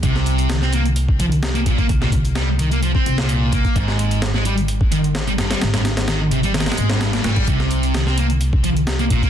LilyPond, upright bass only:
\new Staff \with { instrumentName = "Upright bass" } { \clef bass \time 4/4 \key c \minor \tempo 4 = 129 c,2.~ c,8. r16 | c,2~ c,16 r16 c,4 r8 | aes,,2.~ aes,,8. r16 | aes,,2~ aes,,16 r16 aes,,4 aes,,16 ees,16 |
c,2.~ c,8. r16 | }